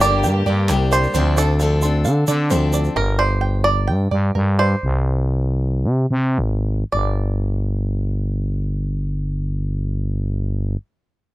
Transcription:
Already playing: fm bass G1, string section D3 A#3 G4, five-string banjo A#4 D5 G5
0.01 steel-string acoustic guitar G3 A#3 D4 G4, five-string banjo D5 A#5, shaker
0.24 fm bass G2, five-string banjo G5, shaker
0.46 fm bass G2, steel-string acoustic guitar G3 A#3 D4 G4, five-string banjo D5
0.69 fm bass C2, steel-string acoustic guitar G3 A#3 D4 G4, five-string banjo A#4, clap, shaker
0.91 five-string banjo C5 D5, shaker
1.03 shaker
1.14 fm bass D2, steel-string acoustic guitar D3 F3 C4 D4 A4, five-string banjo C5, shaker
1.37 steel-string acoustic guitar C4 D4 A4, five-string banjo A4 D5, shaker
1.60 steel-string acoustic guitar F3 C4 D4 A4, five-string banjo F5, shaker
1.82 steel-string acoustic guitar C4 D4 A4, five-string banjo C6, shaker
2.05 fm bass D3, five-string banjo F5, shaker
2.27 fm bass D3, steel-string acoustic guitar C4 D4 A4, five-string banjo D5, shaker
2.50 fm bass D2, steel-string acoustic guitar F3 C4 D4 A4, five-string banjo C5, shaker
2.73 five-string banjo D5, shaker
2.84 shaker
2.96 fm bass G1, five-string banjo A#4
3.19 five-string banjo C5 D5
3.41 five-string banjo G5
3.64 five-string banjo D5 A#5
3.87 fm bass G2, five-string banjo G5
4.11 fm bass G2, five-string banjo D5
4.35 fm bass G2, five-string banjo A#4
4.59 five-string banjo C5 D5
4.83 fm bass C2
5.85 fm bass C3
6.11 fm bass C3
6.38 fm bass G#1
6.92 fm bass G1, five-string banjo D5

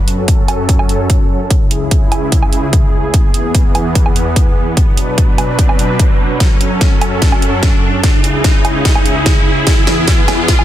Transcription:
Already playing: supersaw synth F#2 F#3 C#4 A4, riser
0.08 closed hi-hat
0.28 kick, closed hi-hat
0.48 closed hi-hat, low woodblock
0.69 kick, closed hi-hat
0.79 low woodblock
0.89 closed hi-hat
1.10 kick, closed hi-hat
1.50 supersaw synth C#2 C#3 E4 G#4, kick, closed hi-hat
1.71 closed hi-hat
1.91 kick, closed hi-hat
2.12 closed hi-hat, low woodblock
2.32 kick, closed hi-hat
2.42 low woodblock
2.53 closed hi-hat
2.73 kick, closed hi-hat
3.14 supersaw synth E2 E3 B3, kick, closed hi-hat
3.34 closed hi-hat
3.55 kick, closed hi-hat
3.75 closed hi-hat, low woodblock
3.95 kick, closed hi-hat
4.06 low woodblock
4.16 closed hi-hat
4.36 kick, closed hi-hat
4.77 supersaw synth B2 F#3 D4 B4, kick, closed hi-hat
4.97 closed hi-hat
5.18 kick, closed hi-hat
5.38 closed hi-hat, low woodblock
5.59 kick, closed hi-hat
5.69 low woodblock
5.79 closed hi-hat
5.99 kick, closed hi-hat
6.40 supersaw synth F#2 C#4 A4, kick, snare, closed hi-hat
6.61 closed hi-hat
6.81 kick, snare, closed hi-hat
7.01 closed hi-hat, low woodblock
7.22 kick, snare, closed hi-hat
7.32 low woodblock
7.42 closed hi-hat
7.63 kick, snare, closed hi-hat
8.04 supersaw synth C#2 C#3 E4 G#4, kick, snare, closed hi-hat
8.24 closed hi-hat
8.44 kick, snare, closed hi-hat
8.65 closed hi-hat, low woodblock
8.85 kick, snare, closed hi-hat
8.95 low woodblock
9.06 closed hi-hat
9.26 kick, snare, closed hi-hat
9.67 supersaw synth E2 E3 B3, kick, snare, closed hi-hat
9.87 snare, closed hi-hat
10.08 kick, snare, closed hi-hat
10.28 snare, closed hi-hat, low woodblock
10.48 kick, snare, closed hi-hat
10.59 low woodblock

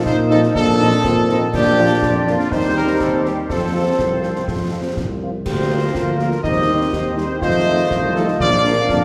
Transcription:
Already playing: trombone section F3 D#4
0.05 tuba A#2, euphonium D#4, trumpet section C5, concert bass drum, snare
0.30 french horn section F3 C4 D#4, woodwind section F4 D#5, trumpet section A4, snare
0.43 snare
0.55 tuba A#2, euphonium D4, trumpet section A4, concert bass drum, snare
0.80 french horn section F3 C4 D#4, woodwind section F4 D#5
1.04 tuba A#2, euphonium C4, concert bass drum, snare
1.29 french horn section F3 C4 D#4, woodwind section F4 D#5, snare
1.53 tuba A#2, trombone section F3 D4, euphonium D4, woodwind section F4 D5, trumpet section G4, concert bass drum, snare, crash
1.78 french horn section F3 A#3 D4
2.02 tuba F2, concert bass drum, snare
2.27 french horn section F3 A#3 D4, trumpet section F4, snare
2.39 snare
2.52 tuba D#2, trombone section G3 C4, euphonium D#4, woodwind section G4 C5, trumpet section C5, concert bass drum, snare
2.76 french horn section G3 C4, trumpet section A#4
3.01 tuba D#2, trumpet section A4, concert bass drum, snare
3.25 french horn section G3 C4, trumpet section G4, snare
3.49 tuba F2, trombone section F3 C4, euphonium C4, woodwind section F4 C5, trumpet section A4, concert bass drum, snare
3.74 french horn section F3 C4 F4
3.99 tuba C2, concert bass drum, snare
4.23 french horn section F3 C4 F4, snare
4.36 snare
4.48 tuba F2, concert bass drum, snare
4.72 french horn section F3 C4 F4
4.97 tuba C2, concert bass drum, snare
5.21 french horn section F3 C4 F4
5.45 tuba D2, trombone section F3 A#3, woodwind section F4 A#4, euphonium G4, trumpet section C5, concert bass drum, snare, crash
5.69 french horn section F3 A#3 F4
5.94 tuba D2, euphonium F4, concert bass drum, snare
6.18 french horn section F3 A#3 F4, trumpet section A#4, snare
6.31 snare
6.43 tuba D#2, trombone section D#3 C4, euphonium D#4, woodwind section G4 C5, trumpet section D#5, concert bass drum, snare
6.67 french horn section G3 C4 D#4
6.93 tuba D#2, euphonium G4, concert bass drum, snare
7.16 french horn section G3 C4 D#4, trumpet section C5, snare
7.41 tuba F2, trombone section A3, euphonium F4, woodwind section A4 D#5, trumpet section C5, concert bass drum, snare
7.65 french horn section F3 A3 D#4
7.91 tuba C2, concert bass drum, snare
8.15 french horn section F3 A3 D#4, trumpet section A4, snare
8.28 snare
8.40 tuba A#1, trombone section F3 A#3, woodwind section A#4 F5, trumpet section D5, concert bass drum, snare
8.64 french horn section F3 A#3 D4
8.89 tuba F2, euphonium D4, concert bass drum, snare

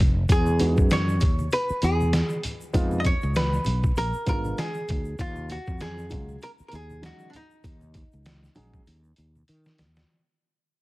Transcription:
0.00 fretless electric bass F1, kick
0.29 fretless electric bass E2, hollow-body jazz guitar G#4, kick, closed hi-hat, shaker
0.46 high conga, shaker
0.59 upright piano G#3 B3 D#4 F#4, closed hi-hat, high conga, low conga, shaker
0.77 fretless electric bass F#2, kick, shaker
0.90 hollow-body jazz guitar C#5, snare, closed hi-hat, shaker
1.09 shaker
1.20 fretless electric bass D#2, kick, closed hi-hat, low conga, shaker
1.39 high conga, shaker
1.51 hollow-body jazz guitar B4, closed hi-hat, shaker
1.69 muted fretless electric bass stroke, shaker
1.82 fretless electric bass E2, hollow-body jazz guitar G#4, closed hi-hat, shaker
2.01 high conga, shaker
2.13 snare, closed hi-hat, shaker
2.30 shaker
2.43 closed hi-hat, low conga, shaker
2.61 shaker
2.73 fretless electric bass F2, upright piano G#3 B3 D#4 F4, kick, closed hi-hat, shaker
2.91 high conga, shaker
3.00 hollow-body jazz guitar D#5
3.04 hollow-body jazz guitar C#5, kick, closed hi-hat, high conga, low conga, shaker
3.22 fretless electric bass C#2, shaker
3.35 hollow-body jazz guitar B4, snare, closed hi-hat, shaker
3.53 shaker
3.64 fretless electric bass B1, closed hi-hat, low conga, shaker
3.83 kick, high conga, shaker
3.96 fretless electric bass A#1, hollow-body jazz guitar A#4, closed hi-hat, shaker
4.13 muted fretless electric bass stroke, shaker
4.26 fretless electric bass G#1, upright piano G#3 B3 D4 F4, hollow-body jazz guitar A#4, kick, closed hi-hat, shaker
4.45 high conga, shaker
4.58 hollow-body jazz guitar G#4, snare, closed hi-hat, shaker
4.74 shaker
4.88 fretless electric bass D2, kick, closed hi-hat, low conga, shaker
5.05 shaker
5.19 fretless electric bass D#2, hollow-body jazz guitar F4, kick, closed hi-hat, shaker
5.36 high conga, shaker
5.49 hollow-body jazz guitar F#4, closed hi-hat, high conga, low conga, shaker
5.67 fretless electric bass F2, kick, shaker
5.79 hollow-body jazz guitar G#4, snare, closed hi-hat, shaker
5.98 shaker
6.10 fretless electric bass C#2, upright piano F#3 G#3 C#4 F4, kick, closed hi-hat, low conga, shaker
6.29 high conga, shaker
6.42 hollow-body jazz guitar A#4, closed hi-hat, shaker
6.59 muted fretless electric bass stroke, shaker
6.68 hollow-body jazz guitar A#4, closed hi-hat, shaker
6.73 fretless electric bass D#2, hollow-body jazz guitar G#4
6.90 high conga, shaker
7.02 upright piano F#3 G#3 C#4 D#4, hollow-body jazz guitar F#4, snare, closed hi-hat, shaker
7.19 shaker
7.30 hollow-body jazz guitar D4, closed hi-hat
7.34 hollow-body jazz guitar D#4, low conga, shaker
7.51 shaker
7.64 fretless electric bass D#2, kick, closed hi-hat, shaker
7.81 high conga, shaker
7.94 kick, closed hi-hat, high conga, low conga, shaker
8.12 fretless electric bass C#2, shaker
8.25 snare, closed hi-hat, high conga, shaker
8.43 snare, shaker
8.55 fretless electric bass A#1, upright piano F#3 G#3 C#4 G#4, closed hi-hat, low conga, shaker
8.74 kick, shaker
8.87 fretless electric bass D#2, closed hi-hat, shaker
9.04 shaker
9.16 fretless electric bass D#2, closed hi-hat, shaker
9.35 high conga, shaker
9.48 fretless electric bass D#3, closed hi-hat, shaker
9.64 snare, shaker
9.78 fretless electric bass D#2, snare, closed hi-hat, low conga, shaker
9.95 snare, shaker

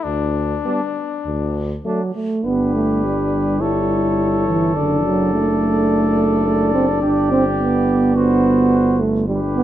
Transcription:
0.03 bass trombone D2, trumpet D4
0.65 trombone G3, french horn B3, flugelhorn D4
1.25 bass trombone D2
1.85 trombone F#3, french horn A3, flugelhorn D4
2.15 trombone A3
2.45 bass trombone G1, trombone B3, french horn D4, flugelhorn G4, trumpet B4
2.75 trombone A3
3.04 trombone G3
3.61 trombone G3, french horn E4, flugelhorn A4, trumpet C#5
4.48 trombone E3
4.76 bass trombone F#1, trombone D3, french horn D4, trumpet D5
5.05 trombone F#3
5.33 trombone A3
6.46 trombone A3
6.75 trombone C4
7.02 bass trombone G1, trombone D4, flugelhorn G4
7.31 trombone C4
7.60 trombone B3
8.16 trombone B3, flugelhorn F#4, trumpet C5
9.00 trombone A3
9.28 trombone G3, french horn D4, flugelhorn G4, trumpet B4
9.56 trombone B3

